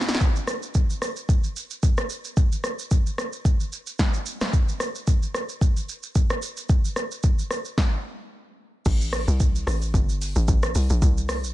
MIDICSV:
0, 0, Header, 1, 3, 480
1, 0, Start_track
1, 0, Tempo, 540541
1, 186, Time_signature, 4, 2, 24, 8
1, 10246, End_track
2, 0, Start_track
2, 0, Title_t, "Log drum bass"
2, 0, Program_c, 0, 39
2, 7866, Note_on_c, 0, 33, 108
2, 8222, Note_off_c, 0, 33, 0
2, 8238, Note_on_c, 0, 36, 95
2, 8571, Note_off_c, 0, 36, 0
2, 8586, Note_on_c, 0, 33, 102
2, 8816, Note_off_c, 0, 33, 0
2, 8826, Note_on_c, 0, 31, 107
2, 9182, Note_off_c, 0, 31, 0
2, 9198, Note_on_c, 0, 33, 92
2, 9301, Note_off_c, 0, 33, 0
2, 9307, Note_on_c, 0, 33, 105
2, 9536, Note_off_c, 0, 33, 0
2, 9548, Note_on_c, 0, 36, 95
2, 9673, Note_off_c, 0, 36, 0
2, 9680, Note_on_c, 0, 34, 93
2, 9782, Note_off_c, 0, 34, 0
2, 9786, Note_on_c, 0, 36, 104
2, 10159, Note_on_c, 0, 34, 98
2, 10172, Note_off_c, 0, 36, 0
2, 10246, Note_off_c, 0, 34, 0
2, 10246, End_track
3, 0, Start_track
3, 0, Title_t, "Drums"
3, 10, Note_on_c, 9, 38, 75
3, 72, Note_on_c, 9, 82, 52
3, 75, Note_off_c, 9, 38, 0
3, 75, Note_on_c, 9, 38, 97
3, 129, Note_off_c, 9, 38, 0
3, 129, Note_on_c, 9, 38, 87
3, 161, Note_off_c, 9, 82, 0
3, 183, Note_on_c, 9, 82, 70
3, 184, Note_on_c, 9, 36, 115
3, 218, Note_off_c, 9, 38, 0
3, 271, Note_off_c, 9, 82, 0
3, 273, Note_off_c, 9, 36, 0
3, 319, Note_on_c, 9, 82, 56
3, 408, Note_off_c, 9, 82, 0
3, 422, Note_on_c, 9, 37, 90
3, 424, Note_on_c, 9, 82, 85
3, 510, Note_off_c, 9, 37, 0
3, 513, Note_off_c, 9, 82, 0
3, 557, Note_on_c, 9, 82, 60
3, 645, Note_off_c, 9, 82, 0
3, 661, Note_on_c, 9, 82, 71
3, 666, Note_on_c, 9, 36, 90
3, 750, Note_off_c, 9, 82, 0
3, 755, Note_off_c, 9, 36, 0
3, 799, Note_on_c, 9, 82, 44
3, 887, Note_off_c, 9, 82, 0
3, 904, Note_on_c, 9, 37, 93
3, 909, Note_on_c, 9, 82, 85
3, 993, Note_off_c, 9, 37, 0
3, 998, Note_off_c, 9, 82, 0
3, 1032, Note_on_c, 9, 82, 48
3, 1121, Note_off_c, 9, 82, 0
3, 1144, Note_on_c, 9, 36, 110
3, 1148, Note_on_c, 9, 82, 73
3, 1233, Note_off_c, 9, 36, 0
3, 1236, Note_off_c, 9, 82, 0
3, 1277, Note_on_c, 9, 82, 45
3, 1365, Note_off_c, 9, 82, 0
3, 1388, Note_on_c, 9, 82, 70
3, 1477, Note_off_c, 9, 82, 0
3, 1514, Note_on_c, 9, 82, 54
3, 1603, Note_off_c, 9, 82, 0
3, 1623, Note_on_c, 9, 82, 70
3, 1625, Note_on_c, 9, 36, 98
3, 1712, Note_off_c, 9, 82, 0
3, 1714, Note_off_c, 9, 36, 0
3, 1753, Note_on_c, 9, 82, 52
3, 1757, Note_on_c, 9, 37, 93
3, 1842, Note_off_c, 9, 82, 0
3, 1846, Note_off_c, 9, 37, 0
3, 1862, Note_on_c, 9, 82, 91
3, 1950, Note_off_c, 9, 82, 0
3, 1994, Note_on_c, 9, 82, 50
3, 2082, Note_off_c, 9, 82, 0
3, 2103, Note_on_c, 9, 82, 69
3, 2104, Note_on_c, 9, 36, 119
3, 2192, Note_off_c, 9, 82, 0
3, 2193, Note_off_c, 9, 36, 0
3, 2239, Note_on_c, 9, 82, 57
3, 2328, Note_off_c, 9, 82, 0
3, 2342, Note_on_c, 9, 37, 88
3, 2345, Note_on_c, 9, 82, 81
3, 2431, Note_off_c, 9, 37, 0
3, 2434, Note_off_c, 9, 82, 0
3, 2477, Note_on_c, 9, 82, 61
3, 2566, Note_off_c, 9, 82, 0
3, 2583, Note_on_c, 9, 82, 72
3, 2587, Note_on_c, 9, 36, 95
3, 2672, Note_off_c, 9, 82, 0
3, 2675, Note_off_c, 9, 36, 0
3, 2721, Note_on_c, 9, 82, 45
3, 2809, Note_off_c, 9, 82, 0
3, 2826, Note_on_c, 9, 37, 95
3, 2831, Note_on_c, 9, 82, 81
3, 2915, Note_off_c, 9, 37, 0
3, 2920, Note_off_c, 9, 82, 0
3, 2954, Note_on_c, 9, 82, 51
3, 3042, Note_off_c, 9, 82, 0
3, 3064, Note_on_c, 9, 36, 111
3, 3067, Note_on_c, 9, 82, 71
3, 3153, Note_off_c, 9, 36, 0
3, 3156, Note_off_c, 9, 82, 0
3, 3199, Note_on_c, 9, 82, 50
3, 3287, Note_off_c, 9, 82, 0
3, 3309, Note_on_c, 9, 82, 71
3, 3397, Note_off_c, 9, 82, 0
3, 3434, Note_on_c, 9, 82, 53
3, 3523, Note_off_c, 9, 82, 0
3, 3544, Note_on_c, 9, 82, 70
3, 3546, Note_on_c, 9, 36, 94
3, 3546, Note_on_c, 9, 38, 76
3, 3633, Note_off_c, 9, 82, 0
3, 3634, Note_off_c, 9, 36, 0
3, 3635, Note_off_c, 9, 38, 0
3, 3673, Note_on_c, 9, 82, 50
3, 3762, Note_off_c, 9, 82, 0
3, 3783, Note_on_c, 9, 82, 90
3, 3871, Note_off_c, 9, 82, 0
3, 3915, Note_on_c, 9, 82, 51
3, 3919, Note_on_c, 9, 37, 89
3, 3919, Note_on_c, 9, 38, 64
3, 4004, Note_off_c, 9, 82, 0
3, 4008, Note_off_c, 9, 37, 0
3, 4008, Note_off_c, 9, 38, 0
3, 4025, Note_on_c, 9, 36, 116
3, 4025, Note_on_c, 9, 82, 70
3, 4113, Note_off_c, 9, 36, 0
3, 4114, Note_off_c, 9, 82, 0
3, 4161, Note_on_c, 9, 82, 56
3, 4250, Note_off_c, 9, 82, 0
3, 4264, Note_on_c, 9, 37, 92
3, 4266, Note_on_c, 9, 82, 81
3, 4352, Note_off_c, 9, 37, 0
3, 4355, Note_off_c, 9, 82, 0
3, 4398, Note_on_c, 9, 82, 59
3, 4487, Note_off_c, 9, 82, 0
3, 4503, Note_on_c, 9, 82, 68
3, 4507, Note_on_c, 9, 36, 96
3, 4592, Note_off_c, 9, 82, 0
3, 4595, Note_off_c, 9, 36, 0
3, 4641, Note_on_c, 9, 82, 45
3, 4730, Note_off_c, 9, 82, 0
3, 4747, Note_on_c, 9, 37, 93
3, 4752, Note_on_c, 9, 82, 84
3, 4835, Note_off_c, 9, 37, 0
3, 4840, Note_off_c, 9, 82, 0
3, 4875, Note_on_c, 9, 82, 50
3, 4964, Note_off_c, 9, 82, 0
3, 4985, Note_on_c, 9, 36, 109
3, 4989, Note_on_c, 9, 82, 69
3, 5074, Note_off_c, 9, 36, 0
3, 5078, Note_off_c, 9, 82, 0
3, 5120, Note_on_c, 9, 82, 49
3, 5208, Note_off_c, 9, 82, 0
3, 5230, Note_on_c, 9, 82, 68
3, 5318, Note_off_c, 9, 82, 0
3, 5355, Note_on_c, 9, 82, 53
3, 5444, Note_off_c, 9, 82, 0
3, 5464, Note_on_c, 9, 82, 73
3, 5465, Note_on_c, 9, 36, 98
3, 5552, Note_off_c, 9, 82, 0
3, 5554, Note_off_c, 9, 36, 0
3, 5594, Note_on_c, 9, 82, 48
3, 5598, Note_on_c, 9, 37, 94
3, 5682, Note_off_c, 9, 82, 0
3, 5686, Note_off_c, 9, 37, 0
3, 5703, Note_on_c, 9, 82, 92
3, 5792, Note_off_c, 9, 82, 0
3, 5833, Note_on_c, 9, 82, 53
3, 5922, Note_off_c, 9, 82, 0
3, 5943, Note_on_c, 9, 82, 70
3, 5944, Note_on_c, 9, 36, 118
3, 6032, Note_off_c, 9, 82, 0
3, 6033, Note_off_c, 9, 36, 0
3, 6080, Note_on_c, 9, 82, 56
3, 6169, Note_off_c, 9, 82, 0
3, 6183, Note_on_c, 9, 37, 88
3, 6185, Note_on_c, 9, 82, 82
3, 6271, Note_off_c, 9, 37, 0
3, 6274, Note_off_c, 9, 82, 0
3, 6318, Note_on_c, 9, 82, 59
3, 6406, Note_off_c, 9, 82, 0
3, 6421, Note_on_c, 9, 82, 70
3, 6426, Note_on_c, 9, 36, 94
3, 6510, Note_off_c, 9, 82, 0
3, 6515, Note_off_c, 9, 36, 0
3, 6560, Note_on_c, 9, 82, 44
3, 6649, Note_off_c, 9, 82, 0
3, 6665, Note_on_c, 9, 37, 90
3, 6670, Note_on_c, 9, 82, 87
3, 6754, Note_off_c, 9, 37, 0
3, 6759, Note_off_c, 9, 82, 0
3, 6793, Note_on_c, 9, 82, 47
3, 6882, Note_off_c, 9, 82, 0
3, 6906, Note_on_c, 9, 36, 103
3, 6906, Note_on_c, 9, 38, 87
3, 6994, Note_off_c, 9, 36, 0
3, 6995, Note_off_c, 9, 38, 0
3, 7866, Note_on_c, 9, 36, 118
3, 7866, Note_on_c, 9, 82, 73
3, 7867, Note_on_c, 9, 49, 103
3, 7954, Note_off_c, 9, 82, 0
3, 7955, Note_off_c, 9, 36, 0
3, 7955, Note_off_c, 9, 49, 0
3, 8002, Note_on_c, 9, 82, 58
3, 8090, Note_off_c, 9, 82, 0
3, 8105, Note_on_c, 9, 37, 95
3, 8108, Note_on_c, 9, 46, 51
3, 8108, Note_on_c, 9, 82, 86
3, 8194, Note_off_c, 9, 37, 0
3, 8197, Note_off_c, 9, 46, 0
3, 8197, Note_off_c, 9, 82, 0
3, 8241, Note_on_c, 9, 82, 62
3, 8330, Note_off_c, 9, 82, 0
3, 8346, Note_on_c, 9, 82, 73
3, 8349, Note_on_c, 9, 36, 98
3, 8435, Note_off_c, 9, 82, 0
3, 8437, Note_off_c, 9, 36, 0
3, 8484, Note_on_c, 9, 82, 47
3, 8573, Note_off_c, 9, 82, 0
3, 8589, Note_on_c, 9, 37, 96
3, 8595, Note_on_c, 9, 46, 49
3, 8595, Note_on_c, 9, 82, 85
3, 8678, Note_off_c, 9, 37, 0
3, 8683, Note_off_c, 9, 46, 0
3, 8683, Note_off_c, 9, 82, 0
3, 8718, Note_on_c, 9, 82, 53
3, 8807, Note_off_c, 9, 82, 0
3, 8826, Note_on_c, 9, 36, 121
3, 8832, Note_on_c, 9, 82, 72
3, 8915, Note_off_c, 9, 36, 0
3, 8920, Note_off_c, 9, 82, 0
3, 8961, Note_on_c, 9, 82, 49
3, 9050, Note_off_c, 9, 82, 0
3, 9071, Note_on_c, 9, 46, 43
3, 9071, Note_on_c, 9, 82, 71
3, 9160, Note_off_c, 9, 46, 0
3, 9160, Note_off_c, 9, 82, 0
3, 9196, Note_on_c, 9, 82, 55
3, 9285, Note_off_c, 9, 82, 0
3, 9306, Note_on_c, 9, 82, 77
3, 9308, Note_on_c, 9, 36, 99
3, 9395, Note_off_c, 9, 82, 0
3, 9397, Note_off_c, 9, 36, 0
3, 9437, Note_on_c, 9, 82, 51
3, 9440, Note_on_c, 9, 37, 94
3, 9525, Note_off_c, 9, 82, 0
3, 9529, Note_off_c, 9, 37, 0
3, 9545, Note_on_c, 9, 46, 55
3, 9545, Note_on_c, 9, 82, 97
3, 9634, Note_off_c, 9, 46, 0
3, 9634, Note_off_c, 9, 82, 0
3, 9676, Note_on_c, 9, 82, 56
3, 9765, Note_off_c, 9, 82, 0
3, 9786, Note_on_c, 9, 36, 121
3, 9786, Note_on_c, 9, 82, 76
3, 9875, Note_off_c, 9, 36, 0
3, 9875, Note_off_c, 9, 82, 0
3, 9923, Note_on_c, 9, 82, 56
3, 10012, Note_off_c, 9, 82, 0
3, 10024, Note_on_c, 9, 37, 96
3, 10027, Note_on_c, 9, 46, 51
3, 10027, Note_on_c, 9, 82, 83
3, 10113, Note_off_c, 9, 37, 0
3, 10116, Note_off_c, 9, 46, 0
3, 10116, Note_off_c, 9, 82, 0
3, 10159, Note_on_c, 9, 82, 63
3, 10246, Note_off_c, 9, 82, 0
3, 10246, End_track
0, 0, End_of_file